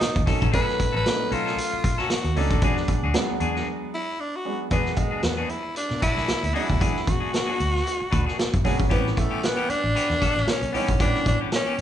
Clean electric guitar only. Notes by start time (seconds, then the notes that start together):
0.00 muted clean electric guitar stroke
0.15 muted clean electric guitar stroke
0.26 C#4 D#4 A4
0.41 C#4 D#4 A4
0.52 C#4 D#4 A4
0.67 muted clean electric guitar stroke
0.79 muted clean electric guitar stroke
0.92 C#4 D#4 A4
1.05 muted clean electric guitar stroke
1.20 muted clean electric guitar stroke
1.31 C#4 D#4 A4
1.45 C#4 D#4 A4
1.58 muted clean electric guitar stroke
1.72 muted clean electric guitar stroke
1.98 C#4 D#4 A4
2.11 muted clean electric guitar stroke
2.25 muted clean electric guitar stroke
2.36 C#4 D#4 A4
2.51 C#4 D#4 A4
2.63 D4 F#4 G#4
2.78 muted clean electric guitar stroke
2.90 muted clean electric guitar stroke
3.04 D4 F#4 G#4
3.15 muted clean electric guitar stroke
3.30 muted clean electric guitar stroke
3.40 D4 F#4 G#4
3.55 D4 F#4 G#4
4.71 D4 F#4 G#4
4.97 muted clean electric guitar stroke
5.11 D4 F#4 G#4
5.23 muted clean electric guitar stroke
5.37 D4 F#4 G#4
5.50 muted clean electric guitar stroke
5.63 muted clean electric guitar stroke
5.75 muted clean electric guitar stroke
5.89 muted clean electric guitar stroke
6.01 D4 F#4 B4
6.16 D4 F#4 G#4
6.42 muted clean electric guitar stroke
6.53 D4 F#4 G#4
6.69 muted clean electric guitar stroke
6.80 D4 F#4 G#4
7.06 muted clean electric guitar stroke
7.20 D4 F#4 G#4
7.33 muted clean electric guitar stroke
7.47 D4 F#4 G#4
7.59 muted clean electric guitar stroke
7.74 muted clean electric guitar stroke
7.86 muted clean electric guitar stroke
8.00 muted clean electric guitar stroke
8.11 D4 F#4 B4
8.26 D4 F#4 G#4
8.38 muted clean electric guitar stroke
8.64 D4 F#4 G#4
8.79 muted clean electric guitar stroke
8.89 B3 C#4 G4
9.16 muted clean electric guitar stroke
9.31 B3 C#4 G4
9.42 muted clean electric guitar stroke
9.57 B3 C#4 G4
9.69 muted clean electric guitar stroke
9.83 muted clean electric guitar stroke
9.95 B3 C#4 G4
10.09 muted clean electric guitar stroke
10.20 B3 C#4 A4
10.36 muted clean electric guitar stroke
10.62 muted clean electric guitar stroke
10.73 B3 C#4 G4
10.89 muted clean electric guitar stroke
11.00 B3 C#4 G4
11.26 muted clean electric guitar stroke
11.41 B3 C#4 G4
11.52 muted clean electric guitar stroke
11.67 B3 C#4 G4
11.77 muted clean electric guitar stroke